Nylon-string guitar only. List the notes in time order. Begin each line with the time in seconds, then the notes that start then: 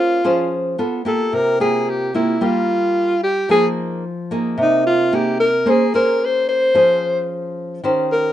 Already playing: A#3 C#4 G#4 C5
0.24 F3 C#4 G#4 C5
0.78 B3 F4 A4
1.05 A#3 F4 G4
1.33 C3
1.60 A#3 F4 G4
2.14 A#3 F4 G4
2.41 G3 A#3 F4 G4
3.49 F3 A#3 D#4 G#4
4.31 A#3 D#4 G#4
4.58 C3
5.13 A#3 D#4 G#4
5.66 A#3 C#4 G#4 C5
5.94 C#4 G#4 C5
6.74 F3 C#4 G#4 C5
7.84 D#3 C#4 G4 C5